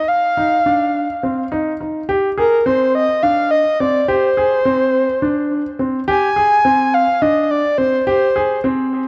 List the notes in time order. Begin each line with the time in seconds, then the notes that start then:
0.08 F5
0.37 D#4
0.66 D4
1.23 C4
1.52 D#4
1.80 D#4
2.09 G4
2.38 G#4 A#4
2.66 C4 C5
2.95 D#5
3.23 D4 F5
3.51 D#5
3.80 C4 D5
4.08 G4 C5
4.37 G#4
4.65 C4
5.22 D4
5.79 C4
6.08 G4 G#5
6.36 G#4
6.65 C4
6.94 F5
7.22 D4 D#5
7.43 D#5
7.50 D5
7.78 C4 C5
8.07 G4 C5
8.36 G#4
8.64 C4